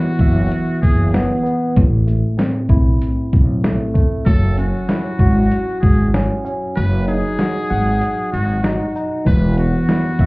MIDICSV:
0, 0, Header, 1, 5, 480
1, 0, Start_track
1, 0, Key_signature, 4, "major"
1, 0, Tempo, 625000
1, 1355, Time_signature, 4, 2, 24, 8
1, 7880, End_track
2, 0, Start_track
2, 0, Title_t, "Muted trumpet"
2, 0, Program_c, 0, 59
2, 0, Note_on_c, 0, 66, 86
2, 608, Note_off_c, 0, 66, 0
2, 628, Note_on_c, 0, 68, 84
2, 847, Note_off_c, 0, 68, 0
2, 3272, Note_on_c, 0, 69, 117
2, 3489, Note_off_c, 0, 69, 0
2, 3525, Note_on_c, 0, 66, 84
2, 4449, Note_off_c, 0, 66, 0
2, 4460, Note_on_c, 0, 68, 84
2, 4683, Note_off_c, 0, 68, 0
2, 5193, Note_on_c, 0, 71, 114
2, 5410, Note_off_c, 0, 71, 0
2, 5440, Note_on_c, 0, 68, 99
2, 6367, Note_off_c, 0, 68, 0
2, 6391, Note_on_c, 0, 66, 91
2, 6745, Note_off_c, 0, 66, 0
2, 7121, Note_on_c, 0, 71, 116
2, 7334, Note_off_c, 0, 71, 0
2, 7363, Note_on_c, 0, 66, 89
2, 7880, Note_off_c, 0, 66, 0
2, 7880, End_track
3, 0, Start_track
3, 0, Title_t, "Tine electric piano"
3, 0, Program_c, 1, 4
3, 0, Control_c, 1, 64, 127
3, 0, Note_on_c, 1, 52, 90
3, 0, Note_on_c, 1, 59, 74
3, 0, Note_on_c, 1, 64, 83
3, 158, Note_on_c, 1, 76, 110
3, 630, Note_off_c, 1, 52, 0
3, 866, Note_off_c, 1, 59, 0
3, 875, Note_on_c, 1, 59, 99
3, 1092, Note_off_c, 1, 59, 0
3, 1102, Note_on_c, 1, 59, 85
3, 1119, Note_off_c, 1, 64, 0
3, 1348, Note_off_c, 1, 59, 0
3, 1352, Note_on_c, 1, 45, 89
3, 1356, Note_off_c, 1, 76, 0
3, 1364, Control_c, 1, 64, 0
3, 1513, Control_c, 1, 64, 127
3, 1591, Note_on_c, 1, 57, 77
3, 1825, Note_on_c, 1, 60, 78
3, 2071, Note_on_c, 1, 64, 98
3, 2553, Note_off_c, 1, 45, 0
3, 2786, Note_off_c, 1, 57, 0
3, 2795, Note_on_c, 1, 57, 101
3, 3020, Note_off_c, 1, 57, 0
3, 3029, Note_on_c, 1, 57, 78
3, 3030, Note_off_c, 1, 60, 0
3, 3271, Note_on_c, 1, 54, 86
3, 3272, Note_off_c, 1, 57, 0
3, 3273, Note_off_c, 1, 64, 0
3, 3284, Control_c, 1, 64, 0
3, 3402, Control_c, 1, 64, 127
3, 3514, Note_on_c, 1, 61, 78
3, 3754, Note_on_c, 1, 64, 85
3, 3993, Note_on_c, 1, 66, 102
3, 4473, Note_off_c, 1, 54, 0
3, 4707, Note_off_c, 1, 61, 0
3, 4716, Note_on_c, 1, 61, 91
3, 4943, Note_off_c, 1, 61, 0
3, 4952, Note_on_c, 1, 61, 78
3, 4955, Note_off_c, 1, 64, 0
3, 5194, Note_off_c, 1, 61, 0
3, 5194, Note_off_c, 1, 66, 0
3, 5196, Note_on_c, 1, 54, 88
3, 5204, Control_c, 1, 64, 0
3, 5329, Control_c, 1, 64, 127
3, 5435, Note_on_c, 1, 63, 81
3, 5678, Note_on_c, 1, 66, 85
3, 5915, Note_on_c, 1, 78, 100
3, 6395, Note_off_c, 1, 54, 0
3, 6621, Note_off_c, 1, 63, 0
3, 6630, Note_on_c, 1, 63, 93
3, 6869, Note_off_c, 1, 63, 0
3, 6876, Note_off_c, 1, 66, 0
3, 6878, Note_on_c, 1, 63, 82
3, 7104, Note_on_c, 1, 52, 91
3, 7115, Note_off_c, 1, 78, 0
3, 7117, Note_off_c, 1, 63, 0
3, 7126, Control_c, 1, 64, 0
3, 7270, Control_c, 1, 64, 127
3, 7352, Note_on_c, 1, 59, 75
3, 7602, Note_on_c, 1, 64, 86
3, 7838, Note_on_c, 1, 76, 108
3, 7880, Note_off_c, 1, 52, 0
3, 7880, Note_off_c, 1, 59, 0
3, 7880, Note_off_c, 1, 64, 0
3, 7880, Note_off_c, 1, 76, 0
3, 7880, End_track
4, 0, Start_track
4, 0, Title_t, "Upright bass"
4, 0, Program_c, 2, 32
4, 150, Note_on_c, 2, 30, 103
4, 367, Note_off_c, 2, 30, 0
4, 640, Note_on_c, 2, 30, 96
4, 974, Note_off_c, 2, 30, 0
4, 1358, Note_on_c, 2, 33, 122
4, 1693, Note_off_c, 2, 33, 0
4, 2070, Note_on_c, 2, 35, 98
4, 2287, Note_off_c, 2, 35, 0
4, 2560, Note_on_c, 2, 35, 92
4, 2894, Note_off_c, 2, 35, 0
4, 3278, Note_on_c, 2, 30, 105
4, 3613, Note_off_c, 2, 30, 0
4, 3989, Note_on_c, 2, 32, 99
4, 4207, Note_off_c, 2, 32, 0
4, 4480, Note_on_c, 2, 32, 93
4, 4814, Note_off_c, 2, 32, 0
4, 5199, Note_on_c, 2, 30, 110
4, 5534, Note_off_c, 2, 30, 0
4, 5919, Note_on_c, 2, 32, 94
4, 6133, Note_off_c, 2, 32, 0
4, 6400, Note_on_c, 2, 32, 92
4, 6734, Note_off_c, 2, 32, 0
4, 7117, Note_on_c, 2, 28, 111
4, 7453, Note_off_c, 2, 28, 0
4, 7829, Note_on_c, 2, 30, 104
4, 7880, Note_off_c, 2, 30, 0
4, 7880, End_track
5, 0, Start_track
5, 0, Title_t, "Drums"
5, 147, Note_on_c, 9, 36, 92
5, 150, Note_on_c, 9, 82, 53
5, 224, Note_off_c, 9, 36, 0
5, 227, Note_off_c, 9, 82, 0
5, 396, Note_on_c, 9, 42, 92
5, 473, Note_off_c, 9, 42, 0
5, 638, Note_on_c, 9, 36, 101
5, 644, Note_on_c, 9, 82, 59
5, 714, Note_off_c, 9, 36, 0
5, 721, Note_off_c, 9, 82, 0
5, 878, Note_on_c, 9, 38, 114
5, 879, Note_on_c, 9, 42, 77
5, 955, Note_off_c, 9, 38, 0
5, 956, Note_off_c, 9, 42, 0
5, 1121, Note_on_c, 9, 82, 49
5, 1197, Note_off_c, 9, 82, 0
5, 1355, Note_on_c, 9, 36, 118
5, 1361, Note_on_c, 9, 42, 97
5, 1432, Note_off_c, 9, 36, 0
5, 1438, Note_off_c, 9, 42, 0
5, 1596, Note_on_c, 9, 42, 52
5, 1596, Note_on_c, 9, 82, 52
5, 1673, Note_off_c, 9, 42, 0
5, 1673, Note_off_c, 9, 82, 0
5, 1835, Note_on_c, 9, 38, 121
5, 1837, Note_on_c, 9, 42, 84
5, 1912, Note_off_c, 9, 38, 0
5, 1913, Note_off_c, 9, 42, 0
5, 2067, Note_on_c, 9, 36, 92
5, 2071, Note_on_c, 9, 82, 53
5, 2144, Note_off_c, 9, 36, 0
5, 2148, Note_off_c, 9, 82, 0
5, 2317, Note_on_c, 9, 42, 92
5, 2394, Note_off_c, 9, 42, 0
5, 2557, Note_on_c, 9, 36, 97
5, 2564, Note_on_c, 9, 82, 60
5, 2634, Note_off_c, 9, 36, 0
5, 2640, Note_off_c, 9, 82, 0
5, 2797, Note_on_c, 9, 38, 117
5, 2798, Note_on_c, 9, 42, 79
5, 2874, Note_off_c, 9, 38, 0
5, 2875, Note_off_c, 9, 42, 0
5, 3036, Note_on_c, 9, 36, 88
5, 3040, Note_on_c, 9, 82, 51
5, 3112, Note_off_c, 9, 36, 0
5, 3117, Note_off_c, 9, 82, 0
5, 3275, Note_on_c, 9, 36, 120
5, 3281, Note_on_c, 9, 42, 93
5, 3352, Note_off_c, 9, 36, 0
5, 3358, Note_off_c, 9, 42, 0
5, 3515, Note_on_c, 9, 42, 52
5, 3515, Note_on_c, 9, 82, 54
5, 3592, Note_off_c, 9, 42, 0
5, 3592, Note_off_c, 9, 82, 0
5, 3755, Note_on_c, 9, 38, 126
5, 3756, Note_on_c, 9, 42, 82
5, 3831, Note_off_c, 9, 38, 0
5, 3833, Note_off_c, 9, 42, 0
5, 3987, Note_on_c, 9, 36, 89
5, 3990, Note_on_c, 9, 82, 53
5, 4063, Note_off_c, 9, 36, 0
5, 4067, Note_off_c, 9, 82, 0
5, 4236, Note_on_c, 9, 42, 98
5, 4313, Note_off_c, 9, 42, 0
5, 4477, Note_on_c, 9, 36, 101
5, 4483, Note_on_c, 9, 82, 60
5, 4554, Note_off_c, 9, 36, 0
5, 4560, Note_off_c, 9, 82, 0
5, 4718, Note_on_c, 9, 38, 109
5, 4719, Note_on_c, 9, 42, 77
5, 4794, Note_off_c, 9, 38, 0
5, 4795, Note_off_c, 9, 42, 0
5, 4960, Note_on_c, 9, 82, 49
5, 5037, Note_off_c, 9, 82, 0
5, 5200, Note_on_c, 9, 42, 95
5, 5277, Note_off_c, 9, 42, 0
5, 5434, Note_on_c, 9, 42, 52
5, 5434, Note_on_c, 9, 82, 54
5, 5511, Note_off_c, 9, 42, 0
5, 5511, Note_off_c, 9, 82, 0
5, 5674, Note_on_c, 9, 38, 119
5, 5676, Note_on_c, 9, 42, 82
5, 5751, Note_off_c, 9, 38, 0
5, 5753, Note_off_c, 9, 42, 0
5, 5910, Note_on_c, 9, 82, 53
5, 5986, Note_off_c, 9, 82, 0
5, 6156, Note_on_c, 9, 42, 94
5, 6232, Note_off_c, 9, 42, 0
5, 6403, Note_on_c, 9, 42, 60
5, 6403, Note_on_c, 9, 82, 60
5, 6480, Note_off_c, 9, 42, 0
5, 6480, Note_off_c, 9, 82, 0
5, 6637, Note_on_c, 9, 38, 112
5, 6638, Note_on_c, 9, 42, 74
5, 6714, Note_off_c, 9, 38, 0
5, 6715, Note_off_c, 9, 42, 0
5, 6879, Note_on_c, 9, 82, 49
5, 6956, Note_off_c, 9, 82, 0
5, 7115, Note_on_c, 9, 36, 121
5, 7120, Note_on_c, 9, 42, 95
5, 7191, Note_off_c, 9, 36, 0
5, 7197, Note_off_c, 9, 42, 0
5, 7355, Note_on_c, 9, 42, 53
5, 7355, Note_on_c, 9, 82, 53
5, 7432, Note_off_c, 9, 42, 0
5, 7432, Note_off_c, 9, 82, 0
5, 7594, Note_on_c, 9, 38, 125
5, 7596, Note_on_c, 9, 42, 83
5, 7671, Note_off_c, 9, 38, 0
5, 7673, Note_off_c, 9, 42, 0
5, 7827, Note_on_c, 9, 36, 93
5, 7830, Note_on_c, 9, 82, 52
5, 7880, Note_off_c, 9, 36, 0
5, 7880, Note_off_c, 9, 82, 0
5, 7880, End_track
0, 0, End_of_file